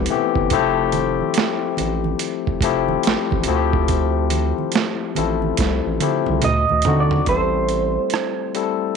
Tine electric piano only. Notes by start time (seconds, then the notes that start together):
Already playing: E3 A3 B3 C4 D#4 E4 G4
0.10 E3 A3 B3 C4 G4
0.52 F3 A3 C4 E4 G4
2.63 F3 A3 C4 E4 G4
3.48 F3 A3 C4 E4 F#4
3.56 G4
5.16 F3 A3 C4 E4 A4
6.01 F3 A3 C4 E4 G4
6.86 A3 C4 D4 D#4 F#4
7.28 G3 A3 C4 E4 G4
7.37 A4
8.55 G3 A3 C4 E4 A4
8.63 A4